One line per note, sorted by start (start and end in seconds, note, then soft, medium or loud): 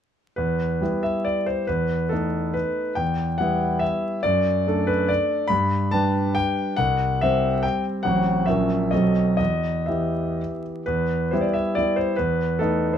0.36 0.79 E2 soft
0.36 1.02 B4 medium
0.81 1.64 G3 soft
0.81 1.64 B3 soft
0.81 1.64 E4 soft
1.03 1.25 E5 medium
1.25 1.47 D5 medium
1.46 1.67 C5 medium
1.67 2.10 E2 soft
1.67 2.10 B4 medium
2.09 2.92 A3 soft
2.09 2.93 B3 soft
2.09 2.93 D#4 soft
2.09 2.54 A4 medium
2.54 2.96 B4 medium
2.95 3.38 E2 soft
2.95 3.39 G5 medium
3.38 4.19 G3 soft
3.38 4.20 B3 soft
3.38 4.20 E4 soft
3.38 3.81 F#5 medium
3.79 4.22 E5 medium
4.23 4.65 F#2 soft
4.23 4.88 D5 medium
4.67 5.46 A3 soft
4.67 5.46 D4 soft
4.67 5.46 A4 soft
4.87 5.08 B4 medium
5.08 5.49 D5 medium
5.48 5.90 G2 medium
5.48 5.90 B5 medium
5.91 6.74 G3 soft
5.91 6.75 D4 soft
5.91 6.75 B4 soft
5.91 6.35 A5 medium
6.35 6.77 G5 medium
6.76 7.19 C2 soft
6.76 7.20 F#5 medium
7.21 8.02 G3 soft
7.21 8.02 C4 soft
7.21 8.02 C5 soft
7.21 7.64 E5 medium
7.63 7.84 G5 medium
8.03 8.46 A1 medium
8.03 8.43 F#3 soft
8.03 8.43 C4 soft
8.03 8.44 C5 soft
8.03 8.46 F#5 medium
8.46 8.91 A#1 soft
8.46 8.89 F#3 soft
8.46 8.89 C#4 soft
8.46 8.89 A#4 soft
8.46 8.92 E5 medium
8.91 9.38 B1 soft
8.91 9.35 F#3 soft
8.91 9.35 C4 soft
8.91 9.36 A4 soft
8.91 9.35 D#5 medium
9.37 9.87 E2 soft
9.37 9.88 D#5 medium
9.86 10.82 E3 soft
9.86 10.82 B3 soft
9.86 10.82 G4 soft
9.86 10.62 E5 soft
10.86 11.31 E2 soft
10.86 11.32 B4 medium
11.31 11.74 G3 soft
11.31 11.74 B3 soft
11.31 11.74 E4 soft
11.31 11.43 C5 soft
11.41 11.54 D5 soft
11.53 11.77 E5 medium
11.75 12.15 G3 soft
11.75 12.15 B3 soft
11.75 12.15 E4 soft
11.75 11.98 D5 medium
11.96 12.18 C5 medium
12.16 12.60 E2 soft
12.16 12.60 B4 medium
12.59 12.98 A3 soft
12.59 12.98 B3 soft
12.59 12.98 D#4 soft
12.59 12.94 A4 medium
12.93 12.98 C5 soft